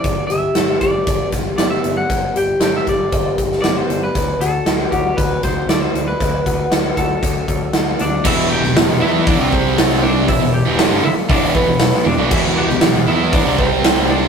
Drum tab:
CC |----------------|----------------|----------------|----------------|
HH |x-x-x-x-x-x-x-x-|x-x-x-x-x-x-x-x-|x-x-x-x-x-x-x-x-|x-x-x-x-x-x-x-x-|
SD |----o-----o-o---|----o------oo---|----o-----o-o---|----o-------o---|
BD |o-----o-o-o-----|o-----o-o-o-----|o-----o-o-o-----|o-o---o-o-o-----|

CC |x---------------|----------------|x---------------|
HH |----o---o---o---|o---o---o---o---|----o---o---o---|
SD |---oo-------oo--|----o-------oo--|---oo-------o---|
BD |o-------o-o-----|o-------o-o-----|o-------o-o-----|